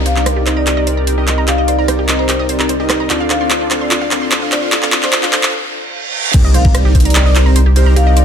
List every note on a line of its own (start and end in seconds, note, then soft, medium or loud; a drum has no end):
0.00 3.08 C2 medium
0.00 0.14 C4 medium
0.00 3.07 C4 medium
0.00 0.14 D#4 medium
0.00 3.07 D#4 medium
0.00 0.14 G4 medium
0.00 0.14 A#4 medium
0.00 3.07 A#4 medium
0.00 0.14 D5 medium
0.00 3.07 D5 medium
0.00 riser medium
0.06 0.09 C5 medium
0.06 0.20 F5 medium
0.06 closed hi-hat medium
0.16 0.44 C4 medium
0.16 0.44 D#4 medium
0.16 0.44 G4 medium
0.16 0.44 A#4 medium
0.16 0.44 D5 loud
0.16 0.23 A#5 medium
0.16 clap soft
0.26 0.31 C5 medium
0.26 cross-stick medium
0.26 closed hi-hat medium
0.36 0.39 G4 medium
0.46 0.75 C4 medium
0.46 0.75 D#4 medium
0.46 0.75 G4 medium
0.46 0.75 A#4 medium
0.46 0.49 C5 medium
0.46 0.75 D#5 loud
0.46 clap medium
0.46 closed hi-hat medium
0.57 0.63 D5 medium
0.57 0.62 A#5 medium
0.67 0.72 G4 medium
0.67 0.73 D5 medium
0.67 clap medium
0.67 closed hi-hat medium
0.77 1.15 C4 medium
0.77 1.15 D#4 medium
0.77 1.15 G4 medium
0.77 1.15 A#4 medium
0.77 1.15 D5 medium
0.77 0.82 D#5 loud
0.87 0.90 C5 medium
0.87 closed hi-hat medium
0.97 1.05 A#5 medium
1.07 1.12 C5 medium
1.07 closed hi-hat medium
1.18 1.45 C4 medium
1.18 1.45 D#4 medium
1.18 1.45 G4 medium
1.18 1.21 G4 medium
1.18 1.45 A#4 medium
1.18 1.45 D#5 loud
1.27 1.31 C5 medium
1.27 clap medium
1.27 closed hi-hat medium
1.38 1.43 A#5 medium
1.48 1.76 C4 medium
1.48 1.76 D#4 medium
1.48 1.76 G4 medium
1.48 1.53 G4 medium
1.48 1.76 A#4 medium
1.48 1.76 D5 medium
1.48 1.54 F5 medium
1.48 clap medium
1.48 closed hi-hat medium
1.58 1.63 D#5 medium
1.58 1.64 F5 medium
1.68 1.71 C5 medium
1.68 1.82 D5 medium
1.68 closed hi-hat medium
1.78 2.06 C4 medium
1.78 2.06 D#4 medium
1.78 2.06 G4 medium
1.78 2.06 A#4 medium
1.78 2.06 D5 loud
1.78 1.86 A#5 medium
1.88 1.93 C5 medium
1.88 cross-stick medium
1.88 closed hi-hat medium
1.99 2.02 G4 medium
2.08 2.37 C4 loud
2.08 2.37 D#4 medium
2.08 2.37 G4 medium
2.08 2.37 A#4 medium
2.08 2.12 C5 medium
2.08 2.37 D#5 loud
2.08 clap medium
2.08 closed hi-hat medium
2.19 2.25 C5 medium
2.19 2.24 A#5 medium
2.29 2.34 G4 medium
2.29 2.35 C5 medium
2.29 clap medium
2.29 closed hi-hat medium
2.39 2.77 C4 medium
2.39 2.77 D#4 medium
2.39 2.77 G4 medium
2.39 2.77 A#4 medium
2.39 2.77 D5 medium
2.39 2.44 D#5 loud
2.49 2.52 C5 medium
2.49 closed hi-hat medium
2.60 2.67 A#5 medium
2.60 clap medium
2.69 2.74 C5 medium
2.69 closed hi-hat medium
2.80 3.07 C4 loud
2.80 3.07 D#4 medium
2.80 3.07 G4 medium
2.80 2.83 G4 medium
2.80 3.07 A#4 medium
2.80 3.07 D#5 loud
2.90 2.93 C5 medium
2.90 cross-stick medium
2.90 clap medium
2.90 closed hi-hat medium
3.00 3.05 A#5 medium
3.10 5.53 D2 medium
3.10 3.38 C4 medium
3.10 6.31 D4 medium
3.10 3.38 D4 medium
3.10 3.38 F4 medium
3.10 3.15 F4 medium
3.10 6.31 A4 medium
3.10 3.38 A4 medium
3.10 6.31 C5 medium
3.10 3.38 D5 medium
3.10 6.31 F5 medium
3.10 clap medium
3.10 closed hi-hat medium
3.20 3.25 F5 loud
3.30 3.33 C5 medium
3.30 3.44 F5 medium
3.30 clap medium
3.30 closed hi-hat medium
3.41 3.68 C4 medium
3.41 3.68 D4 medium
3.41 3.68 F4 medium
3.41 3.68 A4 medium
3.41 3.68 D5 loud
3.41 3.48 C6 medium
3.50 3.56 C5 medium
3.50 clap medium
3.50 closed hi-hat medium
3.61 3.64 F4 medium
3.71 3.99 C4 medium
3.71 3.99 D4 medium
3.71 3.99 F4 medium
3.71 3.99 A4 medium
3.71 3.74 C5 medium
3.71 3.99 F5 loud
3.71 clap medium
3.71 closed hi-hat medium
3.81 3.87 D5 medium
3.81 3.86 C6 medium
3.91 3.96 F4 medium
3.91 3.98 D5 medium
3.91 clap medium
3.91 closed hi-hat medium
4.01 4.39 C4 medium
4.01 4.39 D4 medium
4.01 4.39 F4 medium
4.01 4.39 A4 medium
4.01 4.39 D5 medium
4.01 4.06 F5 loud
4.11 4.14 C5 medium
4.11 clap medium
4.11 closed hi-hat medium
4.22 4.29 C6 medium
4.31 4.37 C5 medium
4.31 clap medium
4.31 closed hi-hat medium
4.42 4.70 C4 medium
4.42 4.70 D4 medium
4.42 4.70 F4 medium
4.42 4.45 F4 medium
4.42 4.70 A4 medium
4.42 4.70 F5 loud
4.52 4.55 C5 medium
4.52 4.58 D5 medium
4.52 clap medium
4.52 closed hi-hat medium
4.62 4.67 C6 medium
4.72 5.00 C4 medium
4.72 5.00 D4 medium
4.72 4.77 F4 medium
4.72 5.00 F4 medium
4.72 5.00 A4 medium
4.72 5.00 D5 medium
4.72 clap medium
4.72 closed hi-hat medium
4.83 4.87 F5 loud
4.83 clap medium
4.92 4.95 C5 medium
4.92 clap medium
4.92 closed hi-hat medium
5.03 5.30 C4 medium
5.03 5.31 D4 medium
5.03 5.30 F4 medium
5.03 5.31 A4 medium
5.03 5.16 C5 medium
5.03 5.31 D5 loud
5.03 5.10 C6 medium
5.03 clap medium
5.13 5.18 C5 medium
5.13 clap medium
5.13 closed hi-hat medium
5.23 5.26 F4 medium
5.23 clap medium
5.33 5.53 C4 medium
5.33 5.53 D4 medium
5.33 5.53 F4 medium
5.33 5.53 A4 medium
5.33 5.36 C5 medium
5.33 5.53 C5 medium
5.33 5.53 F5 loud
5.33 clap loud
5.33 closed hi-hat medium
5.43 5.48 C6 medium
5.43 clap medium
5.53 reverse cymbal medium
6.34 8.25 C2 medium
6.34 6.63 C4 medium
6.34 6.62 D#4 medium
6.34 6.39 G4 medium
6.34 6.63 G4 medium
6.34 6.63 A#4 medium
6.34 6.62 D5 medium
6.34 kick loud
6.34 closed hi-hat medium
6.34 crash loud
6.34 impact medium
6.44 6.49 D#5 loud
6.54 6.57 C5 medium
6.54 6.68 F5 medium
6.54 closed hi-hat medium
6.65 6.93 G4 medium
6.65 6.93 D5 loud
6.65 6.72 A#5 medium
6.65 kick loud
6.75 6.80 C5 medium
6.75 cross-stick medium
6.75 closed hi-hat medium
6.85 6.88 G4 medium
6.95 7.23 C4 medium
6.95 7.23 D#4 medium
6.95 7.23 G4 medium
6.95 7.23 A#4 medium
6.95 6.98 C5 medium
6.95 7.23 D#5 loud
6.95 kick medium
6.95 closed hi-hat medium
7.00 closed hi-hat medium
7.05 7.12 D5 medium
7.05 7.10 A#5 medium
7.05 closed hi-hat medium
7.10 closed hi-hat medium
7.15 7.20 G4 medium
7.15 7.22 D5 medium
7.15 clap loud
7.15 closed hi-hat medium
7.26 7.44 C4 medium
7.26 7.44 D#4 medium
7.26 7.44 G4 medium
7.26 7.44 A#4 medium
7.26 7.44 D5 medium
7.26 7.30 D#5 loud
7.36 7.39 C5 medium
7.36 clap medium
7.36 closed hi-hat medium
7.46 7.59 C4 medium
7.46 7.59 D#4 medium
7.46 7.59 G4 medium
7.46 7.59 A#4 medium
7.46 7.59 C5 medium
7.46 7.53 A#5 medium
7.56 7.61 C5 medium
7.56 closed hi-hat medium
7.66 7.69 G4 medium
7.76 7.94 C4 loud
7.76 7.94 D#4 medium
7.76 7.94 G4 medium
7.76 7.94 A#4 medium
7.76 7.79 C5 medium
7.76 7.94 C5 loud
7.76 closed hi-hat medium
7.86 7.91 A#5 medium
7.96 8.25 C4 medium
7.96 8.25 D#4 medium
7.96 8.01 G4 medium
7.96 8.25 G4 medium
7.96 8.25 A#4 medium
7.96 8.25 D5 medium
7.96 8.03 F5 medium
7.96 closed hi-hat medium
8.07 8.12 D#5 loud
8.16 8.20 C5 medium
8.16 8.25 D5 medium
8.16 closed hi-hat medium